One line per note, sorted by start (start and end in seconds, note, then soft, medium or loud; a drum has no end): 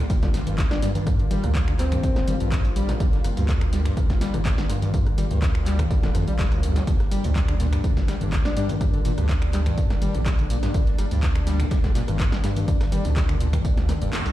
0.00 14.32 D3 medium
0.00 14.32 G3 medium
0.00 14.32 A#3 medium
0.00 6.86 F4 medium
0.10 0.39 G1 medium
0.10 0.14 G3 loud
0.10 kick loud
0.10 closed hi-hat medium
0.10 tambourine medium
0.22 0.29 D3 medium
0.22 kick medium
0.22 snare medium
0.22 closed hi-hat soft
0.34 0.38 G1 medium
0.34 cross-stick medium
0.34 snare medium
0.34 snare soft
0.34 open hi-hat loud
0.34 tambourine medium
0.47 0.75 G1 loud
0.47 0.56 G2 medium
0.47 closed hi-hat medium
0.47 low conga medium
0.58 0.62 G2 medium
0.58 kick loud
0.58 snare loud
0.58 clap loud
0.58 closed hi-hat medium
0.58 tambourine medium
0.71 0.78 D4 medium
0.71 cross-stick medium
0.71 snare medium
0.71 closed hi-hat soft
0.82 1.24 G2 loud
0.82 0.89 G3 medium
0.82 0.91 D4 medium
0.82 snare soft
0.82 open hi-hat loud
0.82 tambourine medium
0.95 1.05 G2 medium
0.95 closed hi-hat soft
0.95 closed hi-hat medium
0.95 low conga loud
1.07 1.11 G2 loud
1.07 kick loud
1.07 cross-stick medium
1.07 closed hi-hat medium
1.07 tambourine medium
1.19 closed hi-hat soft
1.31 1.39 G1 medium
1.31 1.45 G3 loud
1.31 snare soft
1.31 open hi-hat loud
1.31 tambourine medium
1.31 low conga medium
1.44 1.96 D2 medium
1.44 1.50 G2 medium
1.44 cross-stick medium
1.44 closed hi-hat medium
1.55 1.59 G3 loud
1.55 kick loud
1.55 snare loud
1.55 clap loud
1.55 closed hi-hat medium
1.55 tambourine medium
1.68 1.74 D3 medium
1.68 finger snap medium
1.68 snare soft
1.68 closed hi-hat soft
1.79 1.83 G1 medium
1.79 2.47 C4 loud
1.79 cross-stick medium
1.79 snare soft
1.79 clap medium
1.79 open hi-hat loud
1.79 tambourine medium
1.92 2.01 G2 medium
1.92 finger snap medium
1.92 closed hi-hat medium
1.92 low conga loud
2.03 kick loud
2.03 closed hi-hat medium
2.03 tambourine medium
2.16 2.23 D1 medium
2.16 cross-stick medium
2.16 snare medium
2.16 closed hi-hat soft
2.28 2.35 G1 loud
2.28 2.35 G3 medium
2.28 open hi-hat loud
2.28 tambourine medium
2.28 low conga medium
2.40 2.93 A#1 loud
2.40 2.50 G2 medium
2.40 closed hi-hat medium
2.52 2.56 G2 loud
2.52 kick loud
2.52 cross-stick medium
2.52 snare loud
2.52 clap loud
2.52 closed hi-hat medium
2.52 tambourine medium
2.65 closed hi-hat soft
2.76 2.90 G3 loud
2.76 open hi-hat loud
2.76 tambourine medium
2.89 2.95 G2 medium
2.89 cross-stick medium
2.89 snare medium
2.89 closed hi-hat medium
3.00 3.16 G1 loud
3.00 3.04 G3 loud
3.00 kick loud
3.00 closed hi-hat medium
3.00 tambourine medium
3.13 3.19 D3 medium
3.13 snare soft
3.13 closed hi-hat soft
3.24 3.32 G1 medium
3.24 3.29 G1 medium
3.24 cross-stick medium
3.24 open hi-hat loud
3.24 tambourine medium
3.37 3.90 D2 medium
3.37 3.47 G2 medium
3.37 closed hi-hat soft
3.37 closed hi-hat medium
3.49 3.53 G2 medium
3.49 kick loud
3.49 snare loud
3.49 clap loud
3.49 closed hi-hat medium
3.49 tambourine medium
3.61 finger snap medium
3.61 cross-stick medium
3.61 closed hi-hat soft
3.73 3.80 G3 medium
3.73 snare soft
3.73 snare medium
3.73 open hi-hat loud
3.73 tambourine medium
3.85 3.95 G2 medium
3.85 finger snap medium
3.85 snare medium
3.85 closed hi-hat medium
3.97 4.26 G1 medium
3.97 4.01 G2 loud
3.97 kick loud
3.97 cross-stick medium
3.97 closed hi-hat soft
3.97 tambourine medium
4.10 kick medium
4.10 snare medium
4.10 closed hi-hat soft
4.21 4.35 G3 loud
4.21 snare soft
4.21 snare medium
4.21 open hi-hat loud
4.21 tambourine medium
4.34 4.62 G1 loud
4.34 4.40 G2 medium
4.34 cross-stick medium
4.34 closed hi-hat medium
4.34 low conga medium
4.45 4.50 G3 loud
4.45 kick loud
4.45 snare loud
4.45 clap loud
4.45 closed hi-hat medium
4.45 tambourine medium
4.58 4.64 D3 medium
4.58 snare medium
4.58 closed hi-hat soft
4.70 4.74 G1 medium
4.70 5.11 G2 loud
4.70 cross-stick medium
4.70 snare soft
4.70 open hi-hat loud
4.70 tambourine medium
4.82 4.92 G2 medium
4.82 closed hi-hat medium
4.82 closed hi-hat soft
4.82 low conga medium
4.94 4.98 G2 medium
4.94 kick loud
4.94 closed hi-hat soft
4.94 tambourine medium
5.06 cross-stick medium
5.06 closed hi-hat soft
5.18 5.26 G1 medium
5.18 5.25 G3 medium
5.18 snare medium
5.18 open hi-hat loud
5.18 tambourine medium
5.18 low conga medium
5.31 5.83 D2 medium
5.31 5.40 G2 medium
5.31 closed hi-hat soft
5.42 5.46 G2 loud
5.42 kick loud
5.42 cross-stick medium
5.42 snare loud
5.42 clap loud
5.42 closed hi-hat soft
5.42 tambourine medium
5.55 finger snap medium
5.55 snare soft
5.55 closed hi-hat soft
5.66 5.81 G3 loud
5.66 snare soft
5.66 clap medium
5.66 open hi-hat loud
5.66 tambourine medium
5.79 5.85 G2 medium
5.79 finger snap medium
5.79 kick medium
5.79 cross-stick medium
5.79 closed hi-hat medium
5.79 low conga medium
5.90 5.95 G3 loud
5.90 kick loud
5.90 closed hi-hat soft
5.90 tambourine medium
6.03 6.10 D1 loud
6.03 6.10 D3 medium
6.03 snare medium
6.03 closed hi-hat soft
6.15 6.23 G1 loud
6.15 6.25 F2 loud
6.15 cross-stick medium
6.15 open hi-hat loud
6.15 tambourine medium
6.15 low conga medium
6.27 6.38 A#1 loud
6.27 6.34 G3 loud
6.27 closed hi-hat soft
6.39 6.47 F1 loud
6.39 6.46 G3 loud
6.39 kick loud
6.39 snare loud
6.39 clap loud
6.39 closed hi-hat medium
6.39 tambourine medium
6.52 6.64 G1 medium
6.52 6.80 D2 medium
6.52 cross-stick medium
6.52 closed hi-hat soft
6.63 6.77 G2 medium
6.63 open hi-hat loud
6.63 tambourine medium
6.76 6.82 G3 loud
6.76 snare medium
6.76 closed hi-hat medium
6.87 7.03 G1 medium
6.87 6.91 G2 loud
6.87 14.32 D4 medium
6.87 kick loud
6.87 closed hi-hat medium
6.87 tambourine medium
7.00 cross-stick medium
7.00 snare soft
7.00 closed hi-hat soft
7.11 7.19 G1 medium
7.11 7.26 G3 loud
7.11 open hi-hat loud
7.11 tambourine medium
7.24 7.77 D2 medium
7.24 7.30 G2 medium
7.24 closed hi-hat soft
7.36 7.40 G3 loud
7.36 kick loud
7.36 cross-stick medium
7.36 snare loud
7.36 clap loud
7.36 closed hi-hat soft
7.36 tambourine medium
7.48 7.55 D3 medium
7.48 finger snap medium
7.48 closed hi-hat soft
7.60 7.67 A#2 medium
7.60 snare medium
7.60 snare soft
7.60 open hi-hat loud
7.60 tambourine medium
7.72 7.82 G2 medium
7.72 finger snap medium
7.72 cross-stick medium
7.72 snare medium
7.72 closed hi-hat medium
7.84 8.13 G1 medium
7.84 7.88 G2 medium
7.84 kick loud
7.84 closed hi-hat soft
7.84 tambourine medium
7.97 kick medium
7.97 snare medium
7.97 closed hi-hat soft
8.08 8.15 G3 medium
8.08 cross-stick medium
8.08 snare soft
8.08 snare medium
8.08 open hi-hat loud
8.08 tambourine medium
8.21 8.50 G1 loud
8.21 8.30 G2 medium
8.21 closed hi-hat medium
8.21 low conga medium
8.32 kick loud
8.32 snare loud
8.32 clap loud
8.32 closed hi-hat medium
8.32 tambourine medium
8.45 8.53 D4 medium
8.45 cross-stick medium
8.45 snare soft
8.45 snare medium
8.45 closed hi-hat soft
8.57 8.98 G2 loud
8.57 8.71 G3 loud
8.57 8.65 D4 medium
8.57 snare soft
8.57 open hi-hat loud
8.57 tambourine medium
8.69 8.76 G2 medium
8.69 closed hi-hat soft
8.69 closed hi-hat medium
8.69 low conga medium
8.81 8.85 G3 loud
8.81 kick loud
8.81 cross-stick medium
8.81 closed hi-hat medium
8.81 tambourine medium
8.93 9.00 D3 medium
8.93 closed hi-hat soft
9.05 9.13 G1 medium
9.05 9.12 A#2 medium
9.05 snare soft
9.05 open hi-hat loud
9.05 tambourine medium
9.05 low conga medium
9.18 9.71 D2 medium
9.18 9.27 G2 medium
9.18 cross-stick medium
9.18 closed hi-hat soft
9.29 9.33 G2 medium
9.29 kick loud
9.29 snare loud
9.29 clap loud
9.29 closed hi-hat soft
9.29 tambourine medium
9.42 finger snap medium
9.42 snare soft
9.42 closed hi-hat soft
9.53 9.60 G3 medium
9.53 cross-stick medium
9.53 snare soft
9.53 clap medium
9.53 open hi-hat loud
9.53 tambourine medium
9.66 9.76 G2 medium
9.66 finger snap medium
9.66 closed hi-hat medium
9.66 low conga medium
9.78 9.82 G2 loud
9.78 kick loud
9.78 closed hi-hat medium
9.78 tambourine medium
9.90 9.97 D1 loud
9.90 cross-stick medium
9.90 snare medium
9.90 closed hi-hat soft
10.02 10.10 G1 loud
10.02 10.16 G3 loud
10.02 open hi-hat loud
10.02 tambourine medium
10.02 low conga medium
10.15 10.67 A#1 loud
10.15 10.21 G2 medium
10.15 closed hi-hat medium
10.26 10.30 G3 loud
10.26 kick loud
10.26 cross-stick medium
10.26 snare loud
10.26 clap loud
10.26 closed hi-hat medium
10.26 tambourine medium
10.39 10.45 D3 medium
10.39 closed hi-hat soft
10.50 10.57 A#2 medium
10.50 open hi-hat loud
10.50 tambourine medium
10.63 10.72 G2 medium
10.63 cross-stick medium
10.63 snare medium
10.63 closed hi-hat medium
10.74 10.90 G1 loud
10.74 10.79 G2 medium
10.74 kick loud
10.74 closed hi-hat medium
10.74 tambourine medium
10.87 snare soft
10.87 closed hi-hat soft
10.98 11.06 G1 medium
10.98 11.06 G3 medium
10.98 cross-stick medium
10.98 open hi-hat loud
10.98 tambourine medium
11.11 11.64 D2 medium
11.11 11.21 G2 medium
11.11 closed hi-hat medium
11.11 closed hi-hat soft
11.23 11.27 G2 loud
11.23 kick loud
11.23 snare loud
11.23 clap loud
11.23 closed hi-hat medium
11.23 tambourine medium
11.35 finger snap medium
11.35 cross-stick medium
11.35 closed hi-hat soft
11.47 11.61 G3 loud
11.47 snare soft
11.47 snare loud
11.47 open hi-hat loud
11.47 tambourine medium
11.60 11.66 G2 medium
11.60 finger snap medium
11.60 snare medium
11.60 closed hi-hat medium
11.71 12.00 G1 medium
11.71 11.75 G3 loud
11.71 kick loud
11.71 cross-stick medium
11.71 snare loud
11.71 closed hi-hat medium
11.71 tambourine medium
11.84 11.90 D3 medium
11.84 kick medium
11.84 snare medium
11.84 closed hi-hat soft
11.95 12.02 A#2 medium
11.95 snare medium
11.95 snare soft
11.95 open hi-hat loud
11.95 tambourine medium
12.08 12.37 G1 loud
12.08 12.18 G2 medium
12.08 cross-stick medium
12.08 closed hi-hat medium
12.08 low conga medium
12.19 12.24 G2 medium
12.19 kick loud
12.19 snare loud
12.19 clap loud
12.19 closed hi-hat medium
12.19 tambourine medium
12.32 snare medium
12.32 snare soft
12.32 closed hi-hat soft
12.44 12.85 G2 loud
12.44 12.51 G3 medium
12.44 cross-stick medium
12.44 snare loud
12.44 snare soft
12.44 open hi-hat loud
12.44 tambourine medium
12.56 12.66 G2 medium
12.56 closed hi-hat medium
12.56 closed hi-hat soft
12.56 low conga medium
12.68 12.72 G2 loud
12.68 kick loud
12.68 closed hi-hat medium
12.68 tambourine medium
12.81 cross-stick medium
12.81 snare loud
12.81 closed hi-hat soft
12.81 tambourine medium
12.92 13.00 G1 medium
12.92 13.06 G3 loud
12.92 closed hi-hat soft
12.92 open hi-hat loud
12.92 low conga medium
13.05 13.58 D2 medium
13.05 13.11 G2 medium
13.05 closed hi-hat medium
13.05 tambourine medium
13.16 13.21 G3 loud
13.16 kick loud
13.16 cross-stick medium
13.16 snare loud
13.16 clap loud
13.16 closed hi-hat medium
13.16 tambourine medium
13.29 13.35 D3 medium
13.29 finger snap medium
13.29 closed hi-hat soft
13.40 13.48 A#2 medium
13.40 open hi-hat loud
13.40 tambourine medium
13.53 13.63 G2 medium
13.53 finger snap medium
13.53 kick medium
13.53 cross-stick medium
13.53 closed hi-hat medium
13.53 low conga loud
13.65 13.69 G2 medium
13.65 kick loud
13.65 closed hi-hat medium
13.65 tambourine medium
13.77 13.92 D2 loud
13.77 snare medium
13.77 closed hi-hat soft
13.89 13.93 D3 medium
13.89 cross-stick medium
13.89 snare medium
13.89 open hi-hat loud
13.89 tambourine medium
13.89 low conga medium
14.02 14.09 F1 medium
14.02 14.11 G2 medium
14.02 closed hi-hat medium
14.13 14.20 G1 loud
14.13 snare loud
14.13 snare medium
14.13 clap loud
14.13 closed hi-hat medium
14.13 tambourine medium
14.26 14.32 C2 loud
14.26 cross-stick medium
14.26 closed hi-hat soft